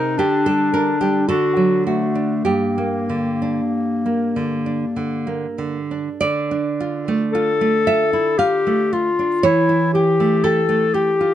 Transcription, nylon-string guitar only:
0.00 0.17 C3 medium
0.00 0.20 D#4 soft
0.00 0.19 A#4 medium
0.19 1.25 D3 soft
0.19 0.46 G4 medium
0.46 0.90 G3 soft
0.46 0.73 A4 medium
0.74 1.18 D4 soft
0.74 1.00 A#4 medium
1.01 1.29 G3 soft
1.01 1.28 G4 medium
1.28 2.42 D3 soft
1.28 2.41 A4 medium
1.57 2.02 F#3 soft
1.87 2.33 F#4 soft
2.15 2.45 D4 soft
2.45 6.16 G2 soft
2.45 4.91 G4 medium
2.78 3.28 A#3 soft
3.09 3.60 D3 soft
3.42 4.42 D4 soft
4.06 4.54 A#3 soft
4.36 4.84 D3 soft
4.66 5.14 D4 soft
4.96 5.45 D3 soft
5.27 5.77 A#3 soft
5.58 6.08 D3 soft
5.91 6.21 D4 soft
6.21 9.42 D3 medium
6.21 7.82 D5 medium
6.51 6.96 D4 soft
6.80 7.24 F4 soft
7.08 7.50 A3 soft
7.35 7.76 F4 soft
7.61 8.02 A3 soft
7.87 8.29 F4 soft
7.87 8.13 E5 medium
8.13 8.38 E4 soft
8.39 8.82 F4 soft
8.39 9.40 F5 medium
8.67 9.09 A3 soft
8.93 9.34 F4 soft
9.19 9.45 D4 soft
9.43 11.34 E3 medium
9.43 10.40 C#5 medium
9.69 10.09 E4 soft
9.95 10.34 G4 soft
10.20 10.60 A3 soft
10.44 10.84 G4 soft
10.44 11.34 A4 medium
10.69 11.10 A3 soft
10.94 11.34 G4 soft
11.21 11.34 F4 soft

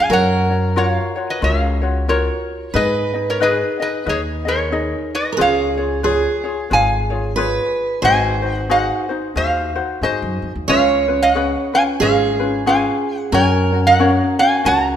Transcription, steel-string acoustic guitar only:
0.10 2.70 A#4 medium
2.74 5.41 B4 medium
5.32 5.37 A#4 medium
5.37 6.00 G#4 medium
6.04 7.33 G#4 medium
7.36 8.02 B4 medium
8.02 10.37 C5 medium
10.68 12.04 C#5 medium
12.00 13.36 G#4 loud
13.32 14.96 A#4 medium

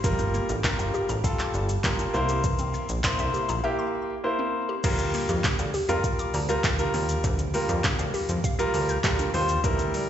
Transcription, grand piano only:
0.04 0.52 G3 medium
0.04 0.53 F4 medium
0.04 0.53 A#4 loud
0.64 1.12 G3 medium
0.64 1.13 F4 medium
0.64 1.13 A#4 loud
1.24 1.72 G3 medium
1.24 1.72 F4 medium
1.24 1.73 A4 medium
1.84 2.14 G3 medium
1.84 2.14 F4 medium
1.84 2.14 A#4 medium
2.14 2.87 A#3 medium
2.14 2.87 E4 medium
2.14 2.87 C5 loud
3.04 3.52 A#3 medium
3.04 3.53 E4 medium
3.04 3.53 C5 loud
3.64 4.12 A#3 medium
3.64 4.13 E4 medium
3.64 4.13 G4 medium
4.24 4.72 A#3 medium
4.24 4.72 E4 medium
4.24 4.73 C5 medium
4.84 5.69 G3 loud
4.84 5.69 F4 medium
4.84 5.69 A#4 loud
5.89 6.37 G3 loud
5.89 6.38 F4 medium
5.89 6.38 A#4 loud
6.49 6.73 G3 medium
6.49 6.73 F4 medium
6.49 6.73 A#4 loud
6.79 7.40 G3 medium
6.79 7.40 F4 medium
6.79 7.40 A#4 loud
7.54 8.39 G3 medium
7.54 8.39 F4 medium
7.54 8.39 A#4 medium
8.59 8.95 G3 loud
8.59 8.95 F4 medium
8.59 8.96 A#4 loud
9.04 9.28 G3 medium
9.04 9.28 F4 medium
9.04 9.28 A#4 loud
9.34 9.58 G3 medium
9.34 9.58 F4 medium
9.34 9.58 C5 loud
9.64 10.09 G3 loud
9.64 10.09 E4 medium
9.64 10.09 A#4 loud

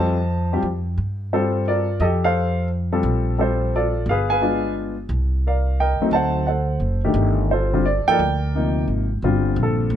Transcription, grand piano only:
0.00 0.16 G3 medium
0.00 0.16 C4 medium
0.00 0.16 F4 medium
0.00 0.16 A4 medium
0.00 0.60 C5 medium
0.00 0.60 D#5 medium
0.00 0.60 A5 loud
0.53 0.64 G3 medium
0.53 0.63 C4 medium
0.53 0.64 F4 medium
0.53 0.64 G4 medium
1.33 1.85 G3 medium
1.33 1.85 C4 medium
1.33 1.67 F4 medium
1.33 1.85 A4 medium
1.33 1.65 C5 medium
1.68 1.99 F4 medium
1.68 1.99 A#4 medium
1.68 2.03 D5 medium
2.00 2.54 G4 medium
2.00 2.23 A4 medium
2.00 2.06 D#5 medium
2.24 2.67 A4 medium
2.24 2.67 C5 medium
2.24 2.67 F5 medium
2.92 3.36 G3 medium
2.92 3.36 C4 medium
2.92 3.36 F4 medium
2.92 3.36 A4 medium
3.39 3.90 G3 medium
3.39 3.90 C4 medium
3.39 3.74 F4 medium
3.39 3.74 A4 medium
3.39 3.75 C5 medium
3.75 4.06 F4 medium
3.75 4.06 A4 medium
3.75 4.09 D5 medium
4.09 4.61 G#4 medium
4.09 4.30 B4 medium
4.09 4.29 F5 medium
4.30 4.74 B4 medium
4.30 4.73 F5 medium
4.30 4.73 G#5 medium
4.41 4.93 G#3 medium
4.41 4.93 B3 medium
4.41 4.94 D4 medium
4.41 4.94 F4 medium
5.47 5.79 A#4 soft
5.47 5.98 D5 medium
5.47 5.81 F5 medium
5.80 6.12 A#4 medium
5.80 6.11 D#5 medium
5.80 6.15 G5 medium
6.02 6.45 F#3 medium
6.02 6.45 A3 medium
6.02 6.45 C4 medium
6.02 6.45 D#4 medium
6.13 6.47 C5 medium
6.13 6.45 F#5 medium
6.13 6.48 A5 medium
6.47 7.01 A4 soft
6.47 7.00 C5 soft
6.47 6.79 F#5 medium
7.04 7.48 D#3 medium
7.04 7.48 A3 medium
7.04 7.48 D4 medium
7.04 7.48 G4 medium
7.51 7.72 F4 medium
7.51 8.04 A4 medium
7.51 7.86 C5 medium
7.73 7.84 D3 medium
7.73 7.84 G3 medium
7.73 7.84 C4 medium
7.73 7.84 F4 medium
7.86 8.08 D5 medium
8.08 8.18 F3 medium
8.08 8.18 A#3 medium
8.08 8.18 D#4 medium
8.08 8.19 A4 medium
8.08 8.86 D5 medium
8.08 8.84 G5 loud
8.12 8.86 A#4 medium
8.55 9.06 C3 medium
8.55 9.06 F3 soft
8.55 9.07 A#3 medium
8.55 9.07 D#4 medium
9.24 9.96 D3 medium
9.24 9.96 G3 medium
9.24 9.96 C4 medium
9.24 9.96 F4 medium
9.63 9.92 A4 medium

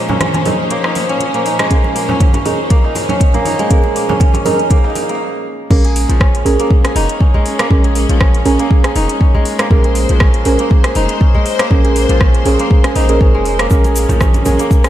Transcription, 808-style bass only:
5.71 6.05 A#1 loud
6.09 6.42 A#1 loud
6.46 6.57 A#1 medium
6.96 7.07 F1 loud
7.34 7.44 A#1 medium
7.71 8.05 A#1 loud
8.09 8.42 A#1 loud
8.46 8.57 A#1 medium
8.96 9.07 F1 medium
9.34 9.44 A#1 medium
9.71 10.05 A#1 loud
10.10 10.43 A#1 loud
10.46 10.57 A#1 medium
10.96 11.07 F1 loud
11.34 11.44 A#1 medium
11.71 12.06 A#1 loud
12.09 12.42 A#1 loud
12.45 12.57 A#1 medium
12.96 13.36 A#1 loud
13.34 13.67 F1 medium
13.71 14.05 A#1 loud
14.09 14.42 A#1 loud
14.46 14.57 A#1 medium

